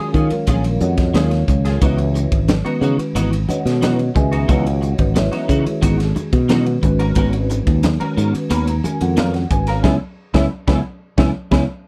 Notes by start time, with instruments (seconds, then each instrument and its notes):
Already playing: tine electric piano D#3 G#3 C#4 F#4 A#4, clean electric guitar F4 G#4
0.00 clean electric guitar C#4
0.14 fretless electric bass D#3, clean electric guitar F#3 C#4 F4 G#4, tine electric piano F4 A#4 C#5 F5, kick, hi-hat pedal
0.30 tine electric piano D#3 F#3 G#3 C#4 A#4, muted fretless electric bass stroke, muted clean electric guitar stroke, ride
0.47 fretless electric bass A#1, clean electric guitar F#3 C#4 F4 G#4, kick, hi-hat pedal, ride
0.64 muted clean electric guitar stroke, ride
0.80 fretless electric bass F2, tine electric piano F#4 C#5 D#5 F#5, muted clean electric guitar stroke, hi-hat pedal, high conga
0.97 kick, snare, ride
1.14 fretless electric bass D#2, tine electric piano D#3 F#3 G#3 C#4 F4 A#4 C#5 F5, clean electric guitar F#3 C#4 F4 G#4, snare, hi-hat pedal, ride, high conga
1.31 muted clean electric guitar stroke, snare, ride
1.48 fretless electric bass C#2, muted clean electric guitar stroke, kick, hi-hat pedal
1.65 clean electric guitar C#4 F4 G#4, snare, ride
1.81 fretless electric bass C#2, clean electric guitar E3 B3 D#4 F#4, tine electric piano E3 G#3 C#4 E4 F#4 B4 C#5 E5, kick, hi-hat pedal, ride, muted conga
1.98 muted clean electric guitar stroke, ride
2.15 muted clean electric guitar stroke, hi-hat pedal, muted conga
2.32 fretless electric bass G#1, kick, ride
2.48 muted clean electric guitar stroke, snare, hi-hat pedal, ride, high conga
2.65 tine electric piano D#3 G#3 C#4 F#4 B4, clean electric guitar B3 D#4 F#4, muted fretless electric bass stroke, ride
2.81 fretless electric bass C#3, clean electric guitar E3 B3 D#4 F#4, hi-hat pedal
2.98 muted clean electric guitar stroke, muted fretless electric bass stroke, ride
3.15 fretless electric bass G#1, clean electric guitar E3 B3 D#4 F#4, hi-hat pedal, ride, muted conga
3.31 muted clean electric guitar stroke, ride
3.48 tine electric piano D#3 G#3 C#4 F#4 B4 C#5 D#5 F#5, muted clean electric guitar stroke, hi-hat pedal, high conga
3.66 fretless electric bass B2, snare, ride
3.82 clean electric guitar E3 B3 D#4 F#4, snare, hi-hat pedal, ride, high conga
3.99 muted clean electric guitar stroke, ride
4.15 fretless electric bass C#2, tine electric piano D#3 G#3 C#4 F#4 G#4 B4 D#5 E5 G#5, muted clean electric guitar stroke, kick, hi-hat pedal, muted conga
4.32 clean electric guitar B3 D#4 F#4, ride
4.48 fretless electric bass C#2, clean electric guitar E3 B3 D#4 F#4, tine electric piano F#4 C#5 D#5 F#5, kick, hi-hat pedal, ride
4.65 muted clean electric guitar stroke, ride
4.81 muted clean electric guitar stroke, hi-hat pedal, muted conga
4.98 fretless electric bass G#1, tine electric piano E3 G#3 C#4 F#4 B4, kick, ride
5.15 tine electric piano E4 B4 C#5 E5, muted clean electric guitar stroke, snare, hi-hat pedal, ride, high conga
5.32 clean electric guitar B3 D#4 F#4, snare, ride
5.48 fretless electric bass C#3, clean electric guitar E3 B3 D#4 F#4, kick, hi-hat pedal
5.65 tine electric piano D#3 G#3 C#4 F#4 G#4, muted clean electric guitar stroke, muted fretless electric bass stroke, ride
5.81 fretless electric bass G#1, clean electric guitar E3 B3 D#4 F#4, kick, hi-hat pedal, ride, muted conga
5.98 muted clean electric guitar stroke, snare, ride
6.15 muted clean electric guitar stroke, hi-hat pedal, high conga
6.33 fretless electric bass B2, kick, ride
6.49 tine electric piano D#3 G#3 C#4 F#4 B4, clean electric guitar E3 B3 D#4 F#4, snare, hi-hat pedal, ride, high conga
6.66 muted clean electric guitar stroke, ride
6.82 fretless electric bass G#1, tine electric piano D#3 G#3 C#4 F#4 B4, muted clean electric guitar stroke, kick, hi-hat pedal
6.99 clean electric guitar C#4 F#4 A#4, ride
7.15 fretless electric bass G#1, clean electric guitar B3 C#4 F#4 A#4, kick, hi-hat pedal, ride
7.33 muted clean electric guitar stroke, ride
7.50 muted clean electric guitar stroke, hi-hat pedal, muted conga
7.67 fretless electric bass D#2, kick, ride
7.83 muted clean electric guitar stroke, snare, hi-hat pedal, ride, high conga
8.00 tine electric piano D#3 G#3 C#4 F#4 B4, clean electric guitar C#4 F#4 A#4, muted fretless electric bass stroke, ride
8.17 fretless electric bass G#2, clean electric guitar B3 C#4 F#4 A#4, hi-hat pedal
8.33 muted clean electric guitar stroke, muted fretless electric bass stroke, ride
8.50 fretless electric bass D#2, clean electric guitar B3 C#4 F#4 A#4, tine electric piano B5, hi-hat pedal, ride, muted conga
8.67 tine electric piano A#5, muted clean electric guitar stroke, ride
8.84 tine electric piano D#3 G#3 C#4 F#4 A#4 G#5, muted clean electric guitar stroke, muted fretless electric bass stroke, hi-hat pedal, high conga
9.01 fretless electric bass F2, tine electric piano F#5, ride
9.17 clean electric guitar B3 C#4 F#4 A#4, tine electric piano F5, snare, hi-hat pedal, ride, high conga
9.34 tine electric piano F#5, muted clean electric guitar stroke, snare, ride
9.50 fretless electric bass G#1, tine electric piano D#3 G#3 C#4 F#4 B4 G#5, muted clean electric guitar stroke, kick, hi-hat pedal, muted conga
9.67 clean electric guitar C#4 F#4 A#4, tine electric piano F5, snare, ride
9.83 fretless electric bass C#2, clean electric guitar B3 C#4 E4, tine electric piano B3 C#4 E4 C#5 E5 G#5, kick, snare, high conga
10.34 fretless electric bass C#2, clean electric guitar B3 C#4 E4, tine electric piano B3 C#4 E4 C#5 E5 G#5, kick, snare, high conga
10.68 fretless electric bass C#2, clean electric guitar B3 C#4 E4, tine electric piano B3 C#4 E4 C#5 E5 G#5, kick, snare, high conga
11.18 fretless electric bass C#2, clean electric guitar B3 C#4 E4, tine electric piano B3 C#4 E4 C#5 E5 G#5, kick, snare, high conga
11.51 fretless electric bass C#2, clean electric guitar B3 C#4 E4, tine electric piano B3 C#4 E4 C#5 E5 G#5, kick, snare, high conga